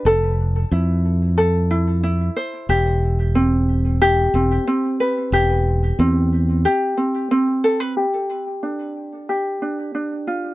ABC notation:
X:1
M:4/4
L:1/16
Q:1/4=91
K:C
V:1 name="Ukulele"
A4 E4 A2 E2 E2 c2 | G4 C4 G2 C2 C2 B2 | G4 C4 G2 C2 C2 A B | G4 D4 G2 D2 D2 F2 |]
V:2 name="Fingered electric bass" clef=bass
F,,,4 F,,8- F,,2 z2 | E,,,8- E,,,2 E,,,2 z4 | E,,,4 E,,4 z8 | z16 |]